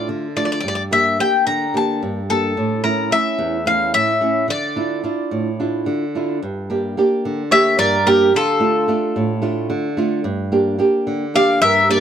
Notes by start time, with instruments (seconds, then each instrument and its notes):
Already playing: nylon-string guitar A3 D4 F4
0.09 nylon-string guitar D3
0.36 nylon-string guitar A3 D4 F4, bouzouki D5
0.45 bouzouki D5
0.52 bouzouki D5
0.60 nylon-string guitar G2, bouzouki D5
0.68 bouzouki D5
0.75 bouzouki D5
0.91 nylon-string guitar A#3 D4 G4, bouzouki E5
1.19 nylon-string guitar A#3 D4 G4, bouzouki G5
1.47 nylon-string guitar D3, bouzouki A#5
1.74 nylon-string guitar A#3 D4 G4, bouzouki A5
2.03 nylon-string guitar G2
2.30 nylon-string guitar A#3 D4 G4, bouzouki A4
2.57 nylon-string guitar A2
2.84 nylon-string guitar A3 C#4 E4, bouzouki A#4
3.11 nylon-string guitar A3 C#4 E4, bouzouki E5
3.38 nylon-string guitar E2
3.65 nylon-string guitar A3 C#4 E4, bouzouki F5
3.94 nylon-string guitar A2, bouzouki E5
4.21 nylon-string guitar A3 C#4 E4
4.48 nylon-string guitar D3, bouzouki D5
4.76 nylon-string guitar D4 E4 F4
5.04 nylon-string guitar D4 E4 F4
5.31 nylon-string guitar A2
5.60 nylon-string guitar D4 E4 F4
5.86 nylon-string guitar D3
6.15 nylon-string guitar D4 E4 F4
6.42 nylon-string guitar G2
6.70 nylon-string guitar A#3 D4 G4
6.97 nylon-string guitar A#3 D4 G4
7.25 nylon-string guitar D3
7.51 nylon-string guitar A#3 D4 G4, mandolin C#5, bouzouki E5
7.78 nylon-string guitar G2, mandolin A#4, bouzouki D5
8.06 nylon-string guitar A#3 D4 G4, mandolin G4, bouzouki A#4
8.34 nylon-string guitar D3, mandolin F4, bouzouki A4
8.60 nylon-string guitar A3 D4 F4
8.88 nylon-string guitar A3 D4 F4
9.16 nylon-string guitar A2
9.42 nylon-string guitar A3 D4 F4
9.70 nylon-string guitar D3
9.97 nylon-string guitar A3 D4 F4
10.24 nylon-string guitar G2
10.52 nylon-string guitar A#3 D4 G4
10.79 nylon-string guitar A#3 D4 G4
11.07 nylon-string guitar D3
11.34 nylon-string guitar A#3 D4 G4, mandolin D5, bouzouki F5
11.61 nylon-string guitar G2, mandolin A#4, bouzouki E5
11.89 nylon-string guitar A#3 D4 G4, mandolin A#4, bouzouki D5